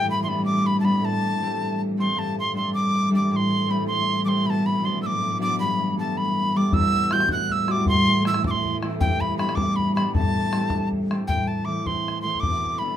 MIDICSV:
0, 0, Header, 1, 5, 480
1, 0, Start_track
1, 0, Tempo, 380469
1, 1286, Time_signature, 6, 3, 24, 8
1, 16362, End_track
2, 0, Start_track
2, 0, Title_t, "Tin whistle"
2, 0, Program_c, 0, 75
2, 133, Note_on_c, 0, 83, 81
2, 281, Note_off_c, 0, 83, 0
2, 297, Note_on_c, 0, 84, 60
2, 359, Note_on_c, 0, 83, 74
2, 378, Note_off_c, 0, 84, 0
2, 562, Note_off_c, 0, 83, 0
2, 569, Note_on_c, 0, 86, 98
2, 837, Note_on_c, 0, 83, 89
2, 856, Note_off_c, 0, 86, 0
2, 1004, Note_off_c, 0, 83, 0
2, 1012, Note_on_c, 0, 81, 59
2, 1070, Note_on_c, 0, 83, 89
2, 1089, Note_off_c, 0, 81, 0
2, 1324, Note_on_c, 0, 81, 105
2, 1343, Note_off_c, 0, 83, 0
2, 2289, Note_off_c, 0, 81, 0
2, 2526, Note_on_c, 0, 84, 76
2, 2760, Note_on_c, 0, 81, 88
2, 2779, Note_off_c, 0, 84, 0
2, 3006, Note_off_c, 0, 81, 0
2, 3024, Note_on_c, 0, 84, 77
2, 3219, Note_off_c, 0, 84, 0
2, 3238, Note_on_c, 0, 84, 72
2, 3440, Note_off_c, 0, 84, 0
2, 3459, Note_on_c, 0, 86, 98
2, 3909, Note_off_c, 0, 86, 0
2, 3978, Note_on_c, 0, 86, 86
2, 4184, Note_off_c, 0, 86, 0
2, 4184, Note_on_c, 0, 86, 93
2, 4242, Note_on_c, 0, 84, 101
2, 4254, Note_off_c, 0, 86, 0
2, 4677, Note_on_c, 0, 83, 79
2, 4696, Note_off_c, 0, 84, 0
2, 4879, Note_off_c, 0, 83, 0
2, 4887, Note_on_c, 0, 84, 95
2, 5342, Note_off_c, 0, 84, 0
2, 5363, Note_on_c, 0, 86, 81
2, 5406, Note_on_c, 0, 84, 88
2, 5419, Note_off_c, 0, 86, 0
2, 5629, Note_on_c, 0, 83, 96
2, 5648, Note_off_c, 0, 84, 0
2, 5676, Note_on_c, 0, 81, 105
2, 5689, Note_off_c, 0, 83, 0
2, 5880, Note_on_c, 0, 83, 92
2, 5899, Note_off_c, 0, 81, 0
2, 6123, Note_on_c, 0, 84, 80
2, 6142, Note_off_c, 0, 83, 0
2, 6331, Note_off_c, 0, 84, 0
2, 6339, Note_on_c, 0, 88, 87
2, 6388, Note_on_c, 0, 86, 94
2, 6401, Note_off_c, 0, 88, 0
2, 6787, Note_off_c, 0, 86, 0
2, 6837, Note_on_c, 0, 86, 85
2, 7036, Note_off_c, 0, 86, 0
2, 7062, Note_on_c, 0, 83, 102
2, 7508, Note_off_c, 0, 83, 0
2, 7558, Note_on_c, 0, 81, 78
2, 7790, Note_on_c, 0, 83, 93
2, 7809, Note_off_c, 0, 81, 0
2, 8286, Note_on_c, 0, 86, 93
2, 8305, Note_off_c, 0, 83, 0
2, 8498, Note_on_c, 0, 88, 120
2, 8517, Note_off_c, 0, 86, 0
2, 8990, Note_on_c, 0, 91, 92
2, 9009, Note_off_c, 0, 88, 0
2, 9206, Note_off_c, 0, 91, 0
2, 9236, Note_on_c, 0, 90, 101
2, 9486, Note_on_c, 0, 88, 98
2, 9505, Note_off_c, 0, 90, 0
2, 9732, Note_on_c, 0, 86, 90
2, 9751, Note_off_c, 0, 88, 0
2, 9936, Note_off_c, 0, 86, 0
2, 9950, Note_on_c, 0, 84, 114
2, 10391, Note_off_c, 0, 84, 0
2, 10433, Note_on_c, 0, 88, 81
2, 10632, Note_off_c, 0, 88, 0
2, 10685, Note_on_c, 0, 86, 90
2, 10735, Note_on_c, 0, 84, 97
2, 10748, Note_off_c, 0, 86, 0
2, 11057, Note_off_c, 0, 84, 0
2, 11361, Note_on_c, 0, 79, 94
2, 11614, Note_on_c, 0, 83, 85
2, 11633, Note_off_c, 0, 79, 0
2, 11826, Note_off_c, 0, 83, 0
2, 11834, Note_on_c, 0, 83, 77
2, 12051, Note_on_c, 0, 86, 90
2, 12070, Note_off_c, 0, 83, 0
2, 12314, Note_on_c, 0, 83, 88
2, 12333, Note_off_c, 0, 86, 0
2, 12548, Note_off_c, 0, 83, 0
2, 12556, Note_on_c, 0, 83, 75
2, 12772, Note_off_c, 0, 83, 0
2, 12802, Note_on_c, 0, 81, 106
2, 13733, Note_off_c, 0, 81, 0
2, 14223, Note_on_c, 0, 79, 85
2, 14478, Note_on_c, 0, 81, 73
2, 14497, Note_off_c, 0, 79, 0
2, 14698, Note_on_c, 0, 86, 84
2, 14716, Note_off_c, 0, 81, 0
2, 14927, Note_off_c, 0, 86, 0
2, 14927, Note_on_c, 0, 86, 78
2, 14971, Note_on_c, 0, 84, 84
2, 14983, Note_off_c, 0, 86, 0
2, 15407, Note_off_c, 0, 84, 0
2, 15414, Note_on_c, 0, 84, 84
2, 15645, Note_on_c, 0, 86, 92
2, 15664, Note_off_c, 0, 84, 0
2, 16130, Note_on_c, 0, 83, 77
2, 16148, Note_off_c, 0, 86, 0
2, 16362, Note_off_c, 0, 83, 0
2, 16362, End_track
3, 0, Start_track
3, 0, Title_t, "Harp"
3, 0, Program_c, 1, 46
3, 0, Note_on_c, 1, 43, 53
3, 0, Note_on_c, 1, 57, 52
3, 0, Note_on_c, 1, 60, 43
3, 0, Note_on_c, 1, 64, 51
3, 310, Note_on_c, 1, 55, 41
3, 322, Note_on_c, 1, 59, 47
3, 329, Note_on_c, 1, 62, 55
3, 397, Note_off_c, 1, 60, 0
3, 1022, Note_off_c, 1, 55, 0
3, 1034, Note_on_c, 1, 55, 52
3, 1039, Note_off_c, 1, 59, 0
3, 1041, Note_off_c, 1, 62, 0
3, 1044, Note_on_c, 1, 59, 45
3, 1046, Note_on_c, 1, 62, 62
3, 1275, Note_on_c, 1, 45, 52
3, 1348, Note_off_c, 1, 43, 0
3, 1348, Note_off_c, 1, 55, 0
3, 1783, Note_off_c, 1, 57, 0
3, 1786, Note_on_c, 1, 55, 44
3, 1788, Note_on_c, 1, 57, 41
3, 1795, Note_on_c, 1, 60, 49
3, 1871, Note_off_c, 1, 59, 0
3, 2473, Note_off_c, 1, 55, 0
3, 2488, Note_on_c, 1, 55, 50
3, 2491, Note_off_c, 1, 57, 0
3, 2495, Note_on_c, 1, 57, 43
3, 2496, Note_off_c, 1, 60, 0
3, 2501, Note_on_c, 1, 60, 52
3, 2716, Note_on_c, 1, 43, 48
3, 2788, Note_off_c, 1, 45, 0
3, 2788, Note_off_c, 1, 55, 0
3, 2913, Note_off_c, 1, 64, 0
3, 3198, Note_on_c, 1, 55, 44
3, 3205, Note_off_c, 1, 62, 0
3, 3206, Note_off_c, 1, 57, 0
3, 3210, Note_on_c, 1, 62, 51
3, 3211, Note_on_c, 1, 57, 45
3, 3901, Note_off_c, 1, 55, 0
3, 3916, Note_on_c, 1, 55, 50
3, 3918, Note_off_c, 1, 57, 0
3, 3923, Note_on_c, 1, 57, 50
3, 3926, Note_off_c, 1, 62, 0
3, 3931, Note_on_c, 1, 62, 48
3, 4175, Note_on_c, 1, 45, 61
3, 4226, Note_off_c, 1, 43, 0
3, 4226, Note_off_c, 1, 55, 0
3, 4638, Note_off_c, 1, 57, 0
3, 4638, Note_on_c, 1, 55, 45
3, 4643, Note_on_c, 1, 57, 42
3, 4647, Note_off_c, 1, 60, 0
3, 4652, Note_on_c, 1, 60, 53
3, 5347, Note_off_c, 1, 55, 0
3, 5362, Note_on_c, 1, 55, 44
3, 5366, Note_off_c, 1, 57, 0
3, 5371, Note_on_c, 1, 57, 46
3, 5373, Note_off_c, 1, 60, 0
3, 5378, Note_on_c, 1, 60, 57
3, 5594, Note_on_c, 1, 47, 54
3, 5664, Note_off_c, 1, 45, 0
3, 5664, Note_off_c, 1, 55, 0
3, 5670, Note_off_c, 1, 60, 0
3, 6082, Note_on_c, 1, 54, 47
3, 6088, Note_on_c, 1, 59, 45
3, 6092, Note_off_c, 1, 62, 0
3, 6097, Note_on_c, 1, 62, 52
3, 6784, Note_off_c, 1, 54, 0
3, 6799, Note_on_c, 1, 54, 49
3, 6805, Note_off_c, 1, 59, 0
3, 6810, Note_on_c, 1, 59, 43
3, 6813, Note_off_c, 1, 62, 0
3, 6819, Note_on_c, 1, 62, 62
3, 7055, Note_on_c, 1, 43, 53
3, 7101, Note_off_c, 1, 47, 0
3, 7101, Note_off_c, 1, 54, 0
3, 7538, Note_on_c, 1, 55, 47
3, 7544, Note_off_c, 1, 57, 0
3, 7547, Note_off_c, 1, 59, 0
3, 7549, Note_on_c, 1, 57, 41
3, 7552, Note_on_c, 1, 59, 47
3, 8255, Note_off_c, 1, 55, 0
3, 8267, Note_off_c, 1, 57, 0
3, 8267, Note_on_c, 1, 55, 53
3, 8270, Note_off_c, 1, 59, 0
3, 8272, Note_on_c, 1, 57, 46
3, 8275, Note_on_c, 1, 59, 56
3, 8495, Note_on_c, 1, 40, 59
3, 8539, Note_off_c, 1, 43, 0
3, 8539, Note_off_c, 1, 55, 0
3, 8982, Note_on_c, 1, 55, 41
3, 8988, Note_on_c, 1, 64, 46
3, 8997, Note_on_c, 1, 66, 49
3, 9667, Note_off_c, 1, 55, 0
3, 9682, Note_on_c, 1, 55, 53
3, 9688, Note_off_c, 1, 64, 0
3, 9689, Note_off_c, 1, 66, 0
3, 9693, Note_on_c, 1, 64, 45
3, 9694, Note_on_c, 1, 66, 52
3, 9926, Note_on_c, 1, 45, 58
3, 9977, Note_off_c, 1, 40, 0
3, 9977, Note_off_c, 1, 55, 0
3, 10350, Note_off_c, 1, 62, 0
3, 10351, Note_off_c, 1, 57, 0
3, 10356, Note_on_c, 1, 57, 44
3, 10394, Note_on_c, 1, 60, 45
3, 10420, Note_off_c, 1, 64, 0
3, 10425, Note_on_c, 1, 64, 49
3, 10470, Note_off_c, 1, 59, 0
3, 11127, Note_off_c, 1, 57, 0
3, 11128, Note_off_c, 1, 60, 0
3, 11132, Note_off_c, 1, 64, 0
3, 11132, Note_on_c, 1, 57, 44
3, 11133, Note_on_c, 1, 60, 43
3, 11137, Note_on_c, 1, 64, 58
3, 11357, Note_on_c, 1, 43, 54
3, 11416, Note_off_c, 1, 45, 0
3, 11433, Note_off_c, 1, 66, 0
3, 11822, Note_on_c, 1, 55, 53
3, 11835, Note_on_c, 1, 59, 43
3, 11846, Note_on_c, 1, 62, 52
3, 11910, Note_off_c, 1, 60, 0
3, 12535, Note_off_c, 1, 55, 0
3, 12550, Note_on_c, 1, 55, 57
3, 12555, Note_off_c, 1, 59, 0
3, 12560, Note_on_c, 1, 59, 40
3, 12561, Note_off_c, 1, 62, 0
3, 12566, Note_on_c, 1, 62, 55
3, 12798, Note_on_c, 1, 45, 59
3, 12856, Note_off_c, 1, 43, 0
3, 12856, Note_off_c, 1, 55, 0
3, 13274, Note_on_c, 1, 55, 45
3, 13286, Note_off_c, 1, 57, 0
3, 13291, Note_on_c, 1, 57, 42
3, 13312, Note_on_c, 1, 60, 48
3, 13388, Note_off_c, 1, 59, 0
3, 14002, Note_off_c, 1, 55, 0
3, 14014, Note_on_c, 1, 55, 50
3, 14019, Note_off_c, 1, 57, 0
3, 14023, Note_off_c, 1, 60, 0
3, 14024, Note_on_c, 1, 57, 44
3, 14028, Note_on_c, 1, 60, 48
3, 14222, Note_off_c, 1, 45, 0
3, 14237, Note_on_c, 1, 45, 48
3, 14299, Note_off_c, 1, 55, 0
3, 14432, Note_off_c, 1, 64, 0
3, 14701, Note_on_c, 1, 52, 39
3, 14715, Note_off_c, 1, 57, 0
3, 14720, Note_on_c, 1, 57, 36
3, 14731, Note_off_c, 1, 60, 0
3, 14737, Note_on_c, 1, 60, 43
3, 14925, Note_off_c, 1, 52, 0
3, 14940, Note_on_c, 1, 52, 45
3, 14948, Note_off_c, 1, 57, 0
3, 14953, Note_on_c, 1, 57, 35
3, 14956, Note_off_c, 1, 60, 0
3, 14961, Note_on_c, 1, 60, 49
3, 15420, Note_off_c, 1, 52, 0
3, 15435, Note_on_c, 1, 52, 41
3, 15445, Note_off_c, 1, 57, 0
3, 15450, Note_on_c, 1, 57, 38
3, 15452, Note_off_c, 1, 60, 0
3, 15457, Note_on_c, 1, 60, 53
3, 15676, Note_on_c, 1, 47, 48
3, 15743, Note_off_c, 1, 52, 0
3, 15744, Note_off_c, 1, 45, 0
3, 15751, Note_off_c, 1, 60, 0
3, 16098, Note_off_c, 1, 62, 0
3, 16150, Note_off_c, 1, 57, 0
3, 16155, Note_on_c, 1, 57, 40
3, 16162, Note_on_c, 1, 59, 33
3, 16169, Note_on_c, 1, 62, 46
3, 16362, Note_off_c, 1, 47, 0
3, 16362, Note_off_c, 1, 57, 0
3, 16362, Note_off_c, 1, 59, 0
3, 16362, Note_off_c, 1, 62, 0
3, 16362, End_track
4, 0, Start_track
4, 0, Title_t, "String section"
4, 0, Program_c, 2, 48
4, 0, Note_on_c, 2, 45, 72
4, 0, Note_on_c, 2, 52, 68
4, 2719, Note_off_c, 2, 52, 0
4, 2723, Note_off_c, 2, 45, 0
4, 2735, Note_on_c, 2, 52, 67
4, 2738, Note_on_c, 2, 45, 63
4, 8457, Note_off_c, 2, 45, 0
4, 8463, Note_off_c, 2, 52, 0
4, 8472, Note_on_c, 2, 45, 74
4, 8478, Note_on_c, 2, 52, 62
4, 14245, Note_off_c, 2, 45, 0
4, 14247, Note_off_c, 2, 52, 0
4, 14260, Note_on_c, 2, 45, 55
4, 14262, Note_on_c, 2, 52, 53
4, 16362, Note_off_c, 2, 45, 0
4, 16362, Note_off_c, 2, 52, 0
4, 16362, End_track
5, 0, Start_track
5, 0, Title_t, "Bodhran"
5, 8485, Note_on_c, 9, 64, 78
5, 8611, Note_off_c, 9, 64, 0
5, 8616, Note_on_c, 9, 64, 23
5, 8742, Note_off_c, 9, 64, 0
5, 8750, Note_on_c, 9, 64, 22
5, 8876, Note_off_c, 9, 64, 0
5, 8968, Note_on_c, 9, 64, 65
5, 9088, Note_off_c, 9, 64, 0
5, 9088, Note_on_c, 9, 64, 49
5, 9191, Note_off_c, 9, 64, 0
5, 9191, Note_on_c, 9, 64, 71
5, 9317, Note_off_c, 9, 64, 0
5, 9452, Note_on_c, 9, 64, 22
5, 9578, Note_off_c, 9, 64, 0
5, 9690, Note_on_c, 9, 64, 54
5, 9817, Note_off_c, 9, 64, 0
5, 9919, Note_on_c, 9, 64, 66
5, 10046, Note_off_c, 9, 64, 0
5, 10052, Note_on_c, 9, 64, 20
5, 10178, Note_off_c, 9, 64, 0
5, 10411, Note_on_c, 9, 64, 64
5, 10526, Note_off_c, 9, 64, 0
5, 10526, Note_on_c, 9, 64, 58
5, 10652, Note_off_c, 9, 64, 0
5, 10652, Note_on_c, 9, 64, 79
5, 10778, Note_off_c, 9, 64, 0
5, 10910, Note_on_c, 9, 64, 23
5, 11036, Note_off_c, 9, 64, 0
5, 11134, Note_on_c, 9, 64, 64
5, 11260, Note_off_c, 9, 64, 0
5, 11367, Note_on_c, 9, 64, 78
5, 11493, Note_off_c, 9, 64, 0
5, 11499, Note_on_c, 9, 64, 27
5, 11625, Note_off_c, 9, 64, 0
5, 11625, Note_on_c, 9, 64, 31
5, 11751, Note_off_c, 9, 64, 0
5, 11852, Note_on_c, 9, 64, 65
5, 11972, Note_off_c, 9, 64, 0
5, 11972, Note_on_c, 9, 64, 56
5, 12076, Note_off_c, 9, 64, 0
5, 12076, Note_on_c, 9, 64, 79
5, 12202, Note_off_c, 9, 64, 0
5, 12346, Note_on_c, 9, 64, 26
5, 12472, Note_off_c, 9, 64, 0
5, 12580, Note_on_c, 9, 64, 64
5, 12706, Note_off_c, 9, 64, 0
5, 12802, Note_on_c, 9, 64, 78
5, 12928, Note_off_c, 9, 64, 0
5, 12934, Note_on_c, 9, 64, 27
5, 13053, Note_off_c, 9, 64, 0
5, 13053, Note_on_c, 9, 64, 26
5, 13179, Note_off_c, 9, 64, 0
5, 13281, Note_on_c, 9, 64, 62
5, 13407, Note_off_c, 9, 64, 0
5, 13499, Note_on_c, 9, 64, 74
5, 13625, Note_off_c, 9, 64, 0
5, 13780, Note_on_c, 9, 64, 23
5, 13906, Note_off_c, 9, 64, 0
5, 14015, Note_on_c, 9, 64, 56
5, 14142, Note_off_c, 9, 64, 0
5, 14241, Note_on_c, 9, 64, 57
5, 14367, Note_off_c, 9, 64, 0
5, 14513, Note_on_c, 9, 64, 22
5, 14639, Note_off_c, 9, 64, 0
5, 14967, Note_on_c, 9, 64, 59
5, 15093, Note_off_c, 9, 64, 0
5, 15243, Note_on_c, 9, 64, 46
5, 15369, Note_off_c, 9, 64, 0
5, 15582, Note_on_c, 9, 64, 19
5, 15682, Note_off_c, 9, 64, 0
5, 15682, Note_on_c, 9, 64, 61
5, 15809, Note_off_c, 9, 64, 0
5, 15968, Note_on_c, 9, 64, 21
5, 16094, Note_off_c, 9, 64, 0
5, 16362, End_track
0, 0, End_of_file